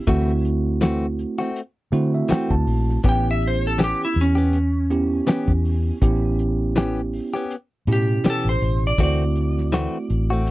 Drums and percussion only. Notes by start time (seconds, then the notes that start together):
0.07 kick, closed hi-hat
0.45 closed hi-hat
0.82 snare, closed hi-hat
1.19 closed hi-hat
1.41 snare
1.56 closed hi-hat
1.93 closed hi-hat
2.31 snare, closed hi-hat
2.51 kick
2.67 open hi-hat
2.89 snare
3.04 kick, closed hi-hat
3.42 closed hi-hat
3.79 snare, closed hi-hat
4.16 closed hi-hat
4.53 closed hi-hat
4.90 closed hi-hat
5.28 snare, closed hi-hat
5.48 kick
5.65 open hi-hat
6.02 kick, closed hi-hat
6.39 closed hi-hat
6.76 snare, closed hi-hat
7.13 open hi-hat
7.50 closed hi-hat
7.87 closed hi-hat
8.24 snare, closed hi-hat
8.61 closed hi-hat
8.98 kick, closed hi-hat
9.36 closed hi-hat
9.58 snare
9.72 snare, closed hi-hat
10.10 closed hi-hat
10.47 closed hi-hat